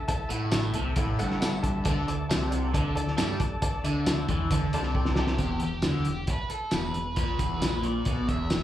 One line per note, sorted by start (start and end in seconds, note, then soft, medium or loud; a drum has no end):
0.00 1.84 A3 medium
0.00 1.85 E4 medium
0.00 1.84 A4 medium
0.00 1.84 E5 medium
0.08 0.26 A4 loud
0.08 0.27 E5 medium
0.08 0.26 A5 loud
0.08 kick loud
0.08 closed hi-hat medium
0.29 0.72 A1 medium
0.29 0.74 A2 medium
0.29 0.48 A4 medium
0.29 0.48 E5 medium
0.29 0.48 F#5 medium
0.29 closed hi-hat medium
0.51 0.70 A4 medium
0.51 0.70 E5 medium
0.51 0.70 A5 medium
0.51 snare loud
0.51 closed hi-hat medium
0.51 tambourine loud
0.74 0.96 C2 medium
0.74 0.96 C3 loud
0.74 0.93 A4 medium
0.74 0.93 E5 medium
0.74 0.93 A5 medium
0.74 closed hi-hat medium
0.96 1.18 A1 loud
0.96 1.18 A2 loud
0.96 1.15 A4 medium
0.96 1.15 E5 medium
0.96 1.15 B5 loud
0.96 kick medium
0.96 closed hi-hat medium
1.19 1.82 G1 medium
1.19 1.85 G2 loud
1.19 1.37 A4 loud
1.19 1.37 E5 loud
1.19 1.37 F#5 loud
1.19 closed hi-hat medium
1.26 1.40 G5 medium
1.31 snare soft
1.40 1.59 A4 loud
1.40 1.59 E5 medium
1.40 1.59 F#5 loud
1.40 1.61 A5 medium
1.40 snare loud
1.40 closed hi-hat medium
1.40 tambourine loud
1.63 1.81 A4 medium
1.63 1.81 E5 medium
1.63 1.81 A5 loud
1.63 kick medium
1.63 closed hi-hat medium
1.70 1.84 B5 medium
1.84 2.07 D2 medium
1.84 2.07 D3 loud
1.84 5.36 A3 medium
1.84 5.37 D4 medium
1.84 5.36 A4 medium
1.84 2.04 A4 loud
1.84 5.36 D5 medium
1.84 2.04 D5 loud
1.84 2.03 A5 loud
1.84 kick loud
1.84 closed hi-hat medium
2.07 2.29 D2 medium
2.07 2.26 D3 medium
2.07 2.25 A4 medium
2.07 2.25 D5 medium
2.07 2.25 A5 loud
2.07 closed hi-hat medium
2.29 2.72 C2 loud
2.29 2.73 C3 medium
2.29 2.47 A4 medium
2.29 2.47 D5 medium
2.29 2.47 A5 medium
2.29 snare loud
2.29 closed hi-hat medium
2.29 tambourine loud
2.51 2.69 A4 medium
2.51 2.69 D5 medium
2.51 2.69 F#5 medium
2.51 closed hi-hat medium
2.73 2.95 D2 medium
2.73 2.94 D3 loud
2.73 2.92 A4 loud
2.73 2.92 D5 medium
2.73 2.92 A5 loud
2.73 kick medium
2.73 closed hi-hat medium
2.95 3.17 D2 medium
2.95 3.14 D3 medium
2.95 3.14 A4 loud
2.95 3.14 D5 loud
2.95 3.14 A5 loud
2.95 closed hi-hat medium
3.07 snare soft
3.17 3.40 G2 loud
3.17 3.40 G3 loud
3.17 3.35 A4 loud
3.17 3.36 D5 medium
3.17 3.36 A5 loud
3.17 snare loud
3.17 closed hi-hat medium
3.17 tambourine loud
3.40 3.58 A4 medium
3.40 3.58 D5 medium
3.40 3.58 A5 loud
3.40 kick medium
3.40 closed hi-hat medium
3.62 3.80 A4 loud
3.62 3.80 D5 loud
3.62 3.80 A5 loud
3.62 kick loud
3.62 closed hi-hat medium
3.84 4.26 D2 loud
3.84 4.28 D3 medium
3.84 4.02 A4 medium
3.84 4.02 D5 medium
3.84 4.02 E5 medium
3.84 closed hi-hat medium
4.06 4.25 A4 medium
4.06 4.25 D5 medium
4.06 4.25 A5 medium
4.06 snare loud
4.06 closed hi-hat loud
4.06 tambourine loud
4.29 4.50 E2 medium
4.29 4.51 E3 medium
4.29 4.47 A4 medium
4.29 4.48 D5 medium
4.29 4.47 C6 medium
4.29 kick medium
4.29 closed hi-hat medium
4.51 4.72 D2 medium
4.51 4.73 D3 loud
4.51 4.69 A4 medium
4.51 4.69 D5 medium
4.51 4.70 A5 medium
4.51 kick medium
4.51 closed hi-hat medium
4.73 5.37 C2 medium
4.73 5.40 C3 loud
4.73 4.92 A4 loud
4.73 4.91 D5 loud
4.73 4.92 A5 loud
4.73 4.94 B5 medium
4.73 closed hi-hat medium
4.83 snare soft
4.95 5.13 A4 loud
4.95 5.14 D5 medium
4.95 5.14 G5 loud
4.95 5.17 A5 medium
4.95 kick medium
5.05 snare medium
5.16 5.60 G4 medium
5.16 5.36 A4 medium
5.16 5.36 D5 medium
5.16 5.39 E5 medium
5.16 5.36 A5 loud
5.16 snare medium
5.27 snare medium
5.38 5.60 E1 medium
5.38 5.62 E2 medium
5.38 kick medium
5.38 closed hi-hat medium
5.60 5.83 E1 medium
5.60 5.81 E2 medium
5.60 6.31 G4 medium
5.60 closed hi-hat medium
5.82 6.06 D2 medium
5.82 6.07 D3 medium
5.82 snare loud
5.82 closed hi-hat medium
5.82 tambourine medium
6.05 6.28 E1 medium
6.05 6.25 E2 medium
6.05 closed hi-hat medium
6.27 6.50 B4 medium
6.27 kick loud
6.27 closed hi-hat medium
6.50 6.73 A4 medium
6.50 closed hi-hat medium
6.71 6.94 E1 medium
6.71 6.94 E2 medium
6.71 7.16 B4 medium
6.71 snare loud
6.71 closed hi-hat medium
6.71 tambourine medium
6.94 7.17 E1 medium
6.94 7.13 E2 medium
6.94 closed hi-hat medium
7.16 7.38 A#1 medium
7.16 7.40 A#2 medium
7.16 7.87 B4 medium
7.16 kick medium
7.16 closed hi-hat medium
7.38 7.60 E1 medium
7.38 7.61 E2 medium
7.38 kick loud
7.38 closed hi-hat medium
7.60 8.04 A#1 loud
7.60 8.05 A#2 loud
7.60 snare loud
7.60 closed hi-hat medium
7.60 tambourine medium
7.83 8.29 D5 medium
7.83 closed hi-hat medium
8.05 8.28 B1 medium
8.05 8.28 B2 loud
8.05 kick medium
8.05 closed hi-hat medium
8.28 8.50 E1 medium
8.28 8.51 E2 loud
8.28 8.63 E5 medium
8.28 kick loud
8.28 closed hi-hat medium
8.50 8.63 E1 medium
8.50 8.63 E2 medium
8.50 snare loud
8.50 closed hi-hat medium
8.50 tambourine loud